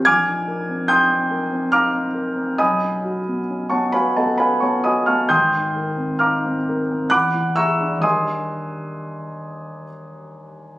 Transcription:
0.05 A#1 G#5 D6 F6 G#6
0.27 D#4
0.47 A#4
0.69 C4
0.88 D#4 G5 C6 D#6 G6
1.09 C4
1.31 A#4
1.52 C4
1.72 D#4 F5 A#5 D6 F6
1.94 C4
2.14 A#4
2.36 C4
2.58 B1 D#5 G#5 B5 D#6
2.83 C#4
3.04 F#4
3.28 B3
3.50 C#4
3.70 B3 C#5 F#5 A5 C#6
3.92 F#4 B4 F5 G#5 B5
4.16 B3 A4 D#5 F#5 A5
4.38 C#4 B4 F5 G#5 B5
4.60 B3 C#5 F#5 A5 C#6
4.84 F#4 D#5 G#5 B5 D#6
5.06 B3 F5 A5 C#6 F6
5.29 G#1 G5 C6 D#6 G6
5.54 D#4
5.76 A#4
5.97 C4
6.19 D#4 F5 A#5 D6 F6
6.45 C4
6.69 A#4
6.91 C4
7.10 E2 F#5 B5 D6 F#6
7.34 E4
7.56 G#4 E5 A#5 C#6 E6
7.80 D4
7.98 D#2 G3 D4 G4 D#6
8.02 A#4 D#5 G#5 C6

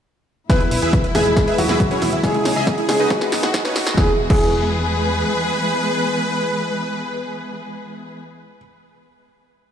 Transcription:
0.50 B2 E3 G#3 B3 E4 G#4 B4 E5, kick, snare, closed hi-hat
0.60 E2 E4 B4, closed hi-hat
0.71 B1 E4, open hi-hat
0.82 E2 E4 G#4 B4 E5, closed hi-hat
0.93 E4, kick, closed hi-hat
1.04 E4 B4, closed hi-hat
1.15 E2 G#3 E4 G#4 B4 E5 G#5, snare, open hi-hat
1.26 E2 E4 E5, closed hi-hat
1.37 E4, kick, snare, closed hi-hat
1.47 E4 G#4 B4 E5, closed hi-hat
1.58 E2 F#3 E4 F#4, open hi-hat
1.69 E2 E4 G#4 B4 E5, snare, closed hi-hat
1.80 E4, kick, closed hi-hat
1.91 C#4 E4 G#4 B4 C#5, closed hi-hat
2.02 E2 E4, snare, open hi-hat
2.13 E2 E4 E5, closed hi-hat
2.23 C#3 G#3 C#4 D#4 E4 G#4 C#5 E5, kick, snare, closed hi-hat
2.34 C#2 E4 G#4, closed hi-hat
2.45 B1 C#4 G#4, snare, open hi-hat
2.56 C#2 G#4 D#5 E5 G#5, closed hi-hat
2.67 C#4 G#4, kick, snare, closed hi-hat
2.78 E4 G#4, closed hi-hat
2.89 C#2 G#3 C#4 G#4, snare, open hi-hat
3.00 C#2 D#4 F#4 G#4 B4 D#5, closed hi-hat
3.10 D#3 F#3 B3 D#4 F#4, kick, snare, closed hi-hat
3.21 F#4 B4, snare, closed hi-hat
3.32 B1 D#4, snare, open hi-hat
3.43 B1 F#4 D#5, snare, closed hi-hat
3.54 D#4 F#4, kick, snare, closed hi-hat
3.65 C#4 D#4 F#4 B4 C#5, snare, closed hi-hat
3.76 B1 D#4 F#4, snare, open hi-hat
3.87 B1 F#4 D#5, snare, closed hi-hat
3.97 E2 E3 G#3 B3 E4 G#4 B4, kick, snare
4.30 E2 E4 G#4 B4, kick, crash

